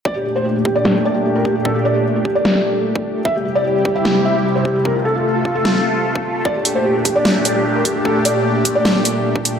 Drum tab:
HH |----------------|----------------|----------------|----------------|
SD |--------o-------|--------oo------|--------o-------|--------oo------|
BD |o-----o-------o-|o-----o------o--|o-----o-------o-|o-----o------o--|

HH |--x---x---x---x-|--x---x---x---x-|
SD |--------o-------|--------oo------|
BD |o-----o-------o-|o-----o------o--|